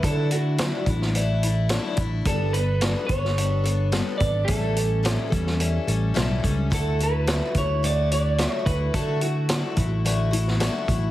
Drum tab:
HH |x-x-x-x-x-x-x-x-|x-x-x-x-x-x-x-x-|x-x-x-x-x-x-x-x-|x-x-x-x-x-x-x-x-|
SD |----o--o----o---|----o--o----o---|----o--o----o---|----o-------o---|
BD |o-----o-------o-|o-----o-------o-|o-----o-------o-|o-----o-------o-|

HH |x-x-x-x-x-x-x-x-|
SD |----o------oo---|
BD |o-----o-------o-|